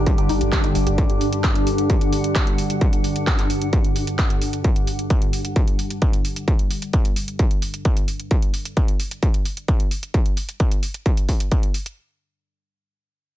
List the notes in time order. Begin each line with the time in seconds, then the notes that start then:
Already playing: G2 D3 D4 G4 G5
0.06 G3, kick, closed hi-hat
0.18 G1 G4, closed hi-hat
0.29 G1 D#4, open hi-hat
0.41 G1 G3, closed hi-hat
0.52 G4, kick, clap, closed hi-hat
0.64 G1 D#4, closed hi-hat
0.75 G1 G3, open hi-hat
0.87 G1 G4, closed hi-hat
0.98 kick, closed hi-hat
1.10 F#5, closed hi-hat
1.21 open hi-hat
1.33 closed hi-hat
1.44 kick, clap, closed hi-hat
1.55 closed hi-hat
1.67 open hi-hat
1.78 closed hi-hat
1.90 kick, closed hi-hat
2.01 closed hi-hat
2.13 open hi-hat
2.24 closed hi-hat
2.35 kick, clap, closed hi-hat
2.47 closed hi-hat
2.58 open hi-hat
2.70 closed hi-hat
2.81 kick, closed hi-hat
2.93 closed hi-hat
3.04 open hi-hat
3.16 closed hi-hat
3.27 kick, clap, closed hi-hat
3.39 clap, closed hi-hat
3.50 open hi-hat
3.62 closed hi-hat
3.73 kick, closed hi-hat
3.84 closed hi-hat
3.96 open hi-hat
4.07 closed hi-hat
4.19 kick, clap, closed hi-hat
4.30 closed hi-hat
4.42 open hi-hat
4.53 closed hi-hat
4.64 kick, closed hi-hat
4.76 closed hi-hat
4.87 open hi-hat
4.99 closed hi-hat
5.10 kick, closed hi-hat
5.22 closed hi-hat
5.33 open hi-hat
5.45 closed hi-hat
5.56 kick, closed hi-hat
5.68 closed hi-hat
5.79 open hi-hat
5.90 closed hi-hat
6.02 kick, closed hi-hat
6.13 closed hi-hat
6.25 open hi-hat
6.36 closed hi-hat
6.48 kick, closed hi-hat
6.59 closed hi-hat
6.71 open hi-hat
6.82 closed hi-hat
6.93 kick, closed hi-hat
7.05 closed hi-hat
7.16 open hi-hat
7.28 closed hi-hat
7.39 kick, closed hi-hat
7.51 closed hi-hat
7.62 open hi-hat
7.74 closed hi-hat
7.85 kick, closed hi-hat
7.97 closed hi-hat
8.08 open hi-hat
8.20 closed hi-hat
8.31 kick, closed hi-hat
8.42 closed hi-hat
8.54 open hi-hat
8.65 closed hi-hat
8.77 kick, closed hi-hat
8.88 closed hi-hat
9.00 open hi-hat
9.11 closed hi-hat
9.23 kick, closed hi-hat
9.34 closed hi-hat
9.45 open hi-hat
9.57 closed hi-hat
9.68 kick, closed hi-hat
9.80 closed hi-hat
9.91 open hi-hat
10.03 closed hi-hat
10.14 kick, closed hi-hat
10.26 closed hi-hat
10.37 open hi-hat
10.49 closed hi-hat
10.60 kick, closed hi-hat
10.72 closed hi-hat
10.83 open hi-hat
10.94 closed hi-hat
11.06 kick, closed hi-hat
11.17 closed hi-hat
11.29 kick, open hi-hat
11.40 closed hi-hat
11.52 kick, closed hi-hat
11.63 closed hi-hat
11.74 open hi-hat
11.86 closed hi-hat